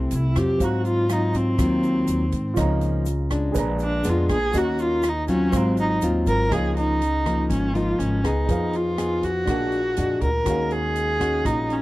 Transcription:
Already playing: nylon-string guitar C3 A3 E4 G4, viola C4, grand piano A4 E5 G5
0.11 upright bass C2, closed hi-hat, shaker
0.15 viola E4
0.35 upright bass F2, nylon-string guitar F#3 C4 F4, viola G4, kick, cross-stick, closed hi-hat, shaker
0.58 nylon-string guitar G#2, upright bass G#2, grand piano C5 F5, kick, closed hi-hat, shaker
0.62 viola F#4, grand piano A#5
0.85 viola F4, closed hi-hat, shaker
1.09 nylon-string guitar F#3 C4 F4, viola D#4, cross-stick, closed hi-hat, shaker
1.34 viola C4, kick, closed hi-hat, shaker
1.58 upright bass D#2, nylon-string guitar D#3 F#3 C4 F4, kick, cross-stick, closed hi-hat, shaker
1.83 closed hi-hat, shaker
2.07 upright bass D#2, closed hi-hat, shaker
2.32 upright bass G#2, kick, closed hi-hat, shaker
2.54 upright bass C#2, nylon-string guitar C#3 F3 A#3 D#4, grand piano F4 C#5 D#5, kick, cross-stick, closed hi-hat, shaker
2.60 grand piano A#5
2.81 closed hi-hat, shaker
3.06 closed hi-hat, shaker
3.31 nylon-string guitar G#3 D4, kick, cross-stick, closed hi-hat, shaker
3.52 upright bass A#1, nylon-string guitar A#2, grand piano G#4 B4, kick, closed hi-hat, shaker
3.56 grand piano D5 A#5
3.79 viola D4, closed hi-hat, shaker
4.04 upright bass F2, nylon-string guitar G#3 B3 D4, closed hi-hat, shaker
4.09 viola F4
4.29 upright bass A#1, viola G#4, kick, cross-stick, closed hi-hat, shaker
4.51 upright bass D#2, nylon-string guitar D#3 A#3 C#4 F#4, grand piano F#4 C#5 D#5, kick, closed hi-hat, shaker
4.57 viola F#4, grand piano A#5
4.79 viola F4, closed hi-hat, shaker
5.03 cross-stick, closed hi-hat, shaker
5.09 viola D#4
5.28 nylon-string guitar F#3 C4 F4, viola C#4, kick, closed hi-hat, shaker
5.52 upright bass G#1, nylon-string guitar G#2, grand piano C5 F5, kick, cross-stick, closed hi-hat, shaker
5.56 viola C4, grand piano A#5
5.77 viola D#4, closed hi-hat, shaker
6.01 upright bass D#2, nylon-string guitar F#3 C4 F4, closed hi-hat, shaker
6.26 upright bass G#1, viola A#4, kick, closed hi-hat, shaker
6.49 upright bass C#2, nylon-string guitar C#3 F3 A#3 D#4, grand piano D#4 A#4 C#5, viola G#4, kick, cross-stick, closed hi-hat
6.55 grand piano F5
6.77 viola D#4, closed hi-hat
7.01 closed hi-hat
7.25 nylon-string guitar F3 A#3 D#4, kick, cross-stick, closed hi-hat
7.50 upright bass G#1, nylon-string guitar G#2, viola C#4, kick, closed hi-hat
7.74 nylon-string guitar F3 A#3 D#4, viola F4, closed hi-hat
7.99 upright bass G#1, viola C#4, closed hi-hat
8.24 upright bass C#2, nylon-string guitar B3 D#4 G#4, viola D#4, kick, cross-stick, closed hi-hat
8.46 upright bass F2, nylon-string guitar F3, grand piano D#4 G#4, kick, closed hi-hat
8.50 grand piano B4 F5
8.73 viola F4, closed hi-hat
8.98 nylon-string guitar B3 D#4 G#4, cross-stick, closed hi-hat
9.23 viola F#4, kick, closed hi-hat
9.45 upright bass A#1, nylon-string guitar A#2 G#3 D4, grand piano D4 G#4 A#4, kick, cross-stick, closed hi-hat
9.50 nylon-string guitar F#4, grand piano F#5
9.72 closed hi-hat
9.96 upright bass F2, nylon-string guitar G#3 D4 F#4, closed hi-hat
10.21 upright bass D2, viola A#4, kick, closed hi-hat
10.44 upright bass D#2, nylon-string guitar D#3 G#3 C#4 F#4, grand piano C#4 F#4 G#4, kick, cross-stick, closed hi-hat
10.50 grand piano F5
10.71 viola G#4, closed hi-hat
10.95 closed hi-hat
11.20 nylon-string guitar G#3 C#4 F#4, kick, cross-stick, closed hi-hat
11.45 upright bass A#1, nylon-string guitar A#2, viola D#4, kick, closed hi-hat
11.70 viola C#4, closed hi-hat

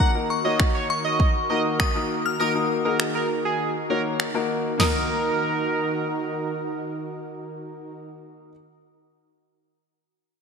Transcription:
Already playing: analog synth pad D#3 D#4 F#4 A#4
0.00 analog synth lead F#5, synth bell A#5, kick
0.14 grand piano A#3 D#4 F#4 A#4
0.30 synth bell C#6
0.44 grand piano A#3 D#4 F#4 C#5, analog synth lead D#5
0.60 finger snap, kick
0.75 analog synth lead C#5
0.90 synth bell C#6
1.04 analog synth lead D#5
1.20 kick
1.50 grand piano A#3 D#4 F#4 A#4, analog synth lead D#5
1.80 synth bell D#6, finger snap, kick
1.95 grand piano A#3 D#4 F#4 A#4
2.26 synth bell F6
2.39 grand piano A#3 D#4 F#4 A#4, analog synth lead A#4, synth bell D#6
2.55 grand piano A#3 D#4 F#4 A#4
2.85 grand piano A#3 D#4 F#4 G#4, analog synth lead A#4
3.00 finger snap
3.15 analog synth lead A#4
3.45 analog synth lead G#4
3.90 grand piano A#3 D#4 F#4 C#5, analog synth lead A#4
4.20 finger snap
4.34 grand piano A#3 D#4 F#4 A#4
4.78 analog synth pad D#3 D#4 F#4 A#4, grand piano A#3 D#4 F#4, analog synth lead A#4, synth bell D#6, snare, floor tom, crash
4.82 grand piano A#4

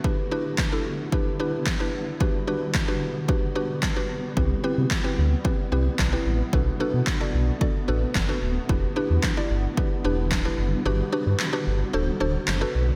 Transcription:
Already playing: ambient pad D3
0.04 ambient pad G3 B3 E4, synth pluck D4 E4 G4 B4, kick
0.31 synth pluck D4 E4 G4 B4
0.58 kick, snare, clap
0.72 synth pluck D4 E4 G4 A4
1.12 synth pluck D4 E4 G4 B4, kick
1.40 synth pluck D4 E4 G4 B4
1.66 kick, snare, clap
1.80 synth pluck D4 E4 G4 B4
2.20 ambient pad G3 F#4, synth pluck D4 F#4 G4 B4, kick
2.47 synth pluck D4 F#4 G4 B4
2.75 kick, snare, clap
2.88 synth pluck D4 F#4 G4 B4
3.28 synth pluck D4 F#4 G4 B4, kick
3.55 synth pluck D4 F#4 G4 B4
3.83 kick, snare, clap
3.96 synth pluck D4 F#4 G4 B4
4.37 sub bass C2, ambient pad C3 E4, synth pluck C4 E4 G4 B4, kick
4.64 synth pluck C4 E4 G4 B4
4.77 sub bass C3
4.91 kick, snare, clap
5.04 synth pluck C4 E4 G4 B4
5.18 sub bass D2
5.44 synth pluck C4 E4 G4 B4, kick
5.72 sub bass C2, synth pluck C4 E4 G4 B4
5.99 sub bass B1, kick, snare, clap
6.12 synth pluck C4 E4 G4 B4
6.26 sub bass A1
6.53 sub bass B1, ambient pad D3 A3 F#4, synth pluck D4 F#4 A4 B4, kick
6.80 synth pluck D4 F#4 A4 B4
6.93 sub bass B2
7.07 kick, snare, clap
7.20 synth pluck D4 F#4 A4 D5
7.34 sub bass B1
7.61 synth pluck D4 F#4 A4 D5, kick
7.88 sub bass A1, synth pluck D4 F#4 A4 B4
8.15 sub bass F#1, kick, snare, clap
8.29 synth pluck D4 F#4 A4 B4
8.42 sub bass D1
8.69 sub bass E1, ambient pad G3 E4, synth pluck D4 E4 G4 B4, kick
8.96 synth pluck D4 E4 G4 B4
9.10 sub bass E2
9.23 kick, snare, clap
9.37 synth pluck D4 E4 G4 D5
9.50 sub bass G1
9.77 synth pluck D4 E4 G4 B4, kick
10.04 sub bass E1, synth pluck D4 E4 G4 B4
10.31 sub bass D1, kick, snare, clap
10.45 synth pluck D4 E4 G4 B4
10.58 sub bass F#1
10.85 sub bass G1, synth pluck D4 F#4 G4 B4, ambient pad F#4
11.12 synth pluck D4 F#4 G4 B4
11.26 sub bass G2
11.40 snare, clap
11.53 synth pluck D4 F#4 G4 B4
11.67 sub bass G1
11.93 sub bass D1, synth pluck D4 F#4 A4 C5
12.20 sub bass D1, synth pluck D4 F#4 A4 C5
12.48 sub bass F#1, snare, clap
12.61 synth pluck D4 F#4 A4 B4
12.75 sub bass B1

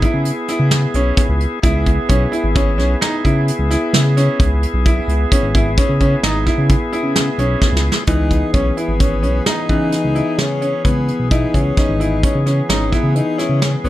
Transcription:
Already playing: tonewheel organ B3 E4 G#4
0.02 grand piano E4, kick, closed hi-hat
0.14 analog synth bass C#3
0.25 closed hi-hat
0.48 grand piano E4, snare, closed hi-hat
0.59 analog synth bass C#3
0.71 snare, closed hi-hat
0.94 analog synth bass B1, grand piano C#4, closed hi-hat
1.17 kick, closed hi-hat
1.29 analog synth bass C#2
1.40 closed hi-hat
1.62 analog synth bass C#2, tonewheel organ B3 E4 G#4, grand piano E4, kick, closed hi-hat
1.86 kick, closed hi-hat
2.09 analog synth bass B1, grand piano C#4, kick, closed hi-hat
2.32 grand piano E4, closed hi-hat
2.44 analog synth bass G#1
2.55 grand piano C#4, kick, closed hi-hat
2.78 analog synth bass B1, grand piano C#4, snare, closed hi-hat
3.01 grand piano D#4, snare, closed hi-hat
3.24 analog synth bass C#3, grand piano E4, kick, closed hi-hat
3.48 closed hi-hat
3.59 analog synth bass C#2
3.71 grand piano E4, snare, closed hi-hat
3.93 analog synth bass C#3, snare, closed hi-hat
4.17 grand piano C#4, snare, closed hi-hat
4.39 analog synth bass C#2, kick, closed hi-hat
4.63 closed hi-hat
4.74 analog synth bass B1
4.86 grand piano E4, kick, closed hi-hat
5.08 analog synth bass C#2, closed hi-hat
5.32 grand piano C#4, kick, closed hi-hat
5.43 analog synth bass G#1
5.55 grand piano E4, kick, closed hi-hat
5.78 grand piano C#4, kick, snare, closed hi-hat
5.89 analog synth bass C#3
6.01 grand piano C#4, kick, closed hi-hat
6.23 analog synth bass G#1, grand piano D#4, snare, closed hi-hat
6.46 grand piano E4, kick, snare, closed hi-hat
6.58 analog synth bass C#3
6.70 kick, closed hi-hat
6.93 grand piano E4, closed hi-hat
7.03 analog synth bass C#3
7.16 snare, closed hi-hat
7.38 analog synth bass B1, grand piano C#4, closed hi-hat
7.62 kick, snare
7.72 analog synth bass C#2
7.77 snare
7.92 snare
8.07 analog synth bass C#2, grand piano E3, tonewheel organ E3 B3 G#4, alto saxophone D#4, kick, closed hi-hat
8.31 kick, closed hi-hat
8.53 analog synth bass B1, alto saxophone C#4, grand piano C#4, kick, closed hi-hat
8.77 alto saxophone B3, grand piano E4, closed hi-hat
8.88 analog synth bass G#1
9.00 grand piano C#4, kick, closed hi-hat
9.23 analog synth bass B1, grand piano C#4, closed hi-hat
9.46 grand piano D#4, alto saxophone D#4, snare, closed hi-hat
9.69 analog synth bass C#3, grand piano E3, kick, closed hi-hat
9.92 snare, closed hi-hat
10.04 analog synth bass C#2
10.15 grand piano E4, closed hi-hat
10.38 analog synth bass C#3, alto saxophone C#4, snare, closed hi-hat
10.62 grand piano C#4, closed hi-hat
10.84 analog synth bass C#2, alto saxophone B3, kick, closed hi-hat
11.08 closed hi-hat
11.19 analog synth bass B1
11.31 alto saxophone D#4, grand piano E4, kick, closed hi-hat
11.54 analog synth bass C#2, alto saxophone C#4, kick, closed hi-hat
11.77 grand piano C#4, alto saxophone D#4, kick, snare, closed hi-hat
11.89 analog synth bass G#1
12.00 grand piano E4, closed hi-hat
12.23 grand piano C#4, kick, closed hi-hat
12.35 analog synth bass C#3
12.46 grand piano C#4, snare, closed hi-hat
12.69 analog synth bass G#1, alto saxophone C#4, grand piano D#4, snare, closed hi-hat
12.92 alto saxophone B3, grand piano E4, kick, snare, closed hi-hat
13.03 analog synth bass C#3
13.16 alto saxophone D#4, closed hi-hat
13.38 alto saxophone C#4, grand piano E4, snare, closed hi-hat
13.49 analog synth bass C#3
13.62 alto saxophone C#4, snare, closed hi-hat
13.84 analog synth bass B1, alto saxophone B3, grand piano C#4, closed hi-hat

